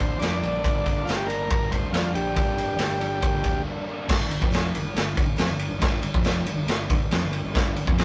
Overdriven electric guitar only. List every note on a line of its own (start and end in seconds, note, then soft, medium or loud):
0.00 0.61 G2 loud
0.00 0.18 D3 medium
0.00 0.21 G3 medium
0.00 0.21 A#3 loud
0.00 0.22 D4 loud
0.19 0.62 D3 medium
0.19 0.44 G3 medium
0.19 0.42 A#3 medium
0.19 0.40 D4 medium
0.40 0.63 A#3 medium
0.40 0.64 D4 medium
0.44 0.63 G3 medium
0.61 1.49 G2 medium
0.61 1.04 D3 loud
0.61 0.86 G3 loud
0.61 0.85 A#3 loud
0.61 0.83 D4 loud
0.84 1.06 G3 medium
0.84 1.07 A#3 medium
0.84 1.08 D4 medium
1.05 1.49 D3 medium
1.05 1.29 G3 medium
1.05 1.27 A#3 medium
1.05 1.26 D4 medium
1.26 1.50 G3 medium
1.26 1.51 A#3 medium
1.26 1.52 D4 medium
1.49 2.33 G2 medium
1.49 1.90 D3 medium
1.49 1.91 G3 medium
1.49 1.93 A#3 loud
1.49 1.94 D4 loud
1.92 2.33 D3 medium
1.92 2.17 G3 medium
1.92 2.15 A#3 medium
1.92 2.14 D4 medium
2.14 2.34 G3 medium
2.14 2.35 A#3 medium
2.14 2.35 D4 medium
2.33 2.78 G2 loud
2.33 2.77 D3 medium
2.33 2.57 G3 medium
2.33 2.56 A#3 loud
2.33 2.54 D4 loud
2.55 2.78 G3 medium
2.55 2.79 A#3 medium
2.55 2.80 D4 medium
2.78 3.19 D3 medium
2.78 3.01 G3 medium
2.78 2.99 A#3 medium
2.78 2.98 D4 medium
2.99 3.20 G3 medium
2.99 3.20 A#3 medium
2.99 3.21 D4 medium
3.20 3.86 G2 loud
3.20 3.63 D3 loud
3.20 3.63 G3 loud
3.20 3.65 A#3 loud
3.20 3.66 D4 medium
3.64 4.07 D3 medium
3.64 3.88 G3 medium
3.64 3.87 A#3 medium
3.64 3.86 D4 medium
3.87 4.08 G3 medium
3.87 4.08 A#3 medium
3.87 4.07 D4 medium
4.08 4.28 G2 loud
4.08 4.29 D3 loud
4.08 4.30 G3 loud
4.29 4.40 G2 medium
4.29 4.41 D3 medium
4.40 4.73 F2 loud
4.40 4.73 C3 medium
4.40 4.73 F3 loud
4.74 4.83 G2 medium
4.74 4.84 D3 medium
4.84 4.94 G2 medium
4.84 4.94 D3 medium
4.95 5.12 G2 medium
4.95 5.13 D3 medium
5.16 5.25 G2 medium
5.16 5.25 D3 loud
5.26 5.38 G2 medium
5.26 5.37 D3 medium
5.38 5.48 F3 loud
5.38 5.48 C4 loud
5.48 5.66 G2 medium
5.48 5.66 D3 medium
5.69 5.78 G2 medium
5.69 5.79 D3 medium
5.79 6.01 G2 medium
5.79 6.02 D3 loud
5.79 6.02 G3 loud
6.04 6.13 G2 medium
6.04 6.13 D3 medium
6.13 6.45 F2 loud
6.13 6.45 C3 medium
6.13 6.46 F3 loud
6.46 6.57 G2 medium
6.46 6.57 D3 medium
6.58 6.67 G2 medium
6.58 6.68 D3 medium
6.68 6.85 G2 medium
6.68 6.86 D3 medium
6.89 6.99 G2 medium
6.89 7.00 D3 loud
7.02 7.12 G2 medium
7.02 7.11 D3 medium
7.12 7.21 F3 loud
7.12 7.22 C4 loud
7.21 7.39 G2 medium
7.21 7.39 D3 medium
7.44 7.53 G2 medium
7.44 7.53 D3 medium
7.54 7.75 G2 loud
7.54 7.75 D3 loud
7.54 7.76 G3 loud
7.76 7.85 G2 medium
7.76 7.86 D3 medium
7.85 8.04 F2 medium
7.85 8.04 C3 medium
7.85 8.04 F3 loud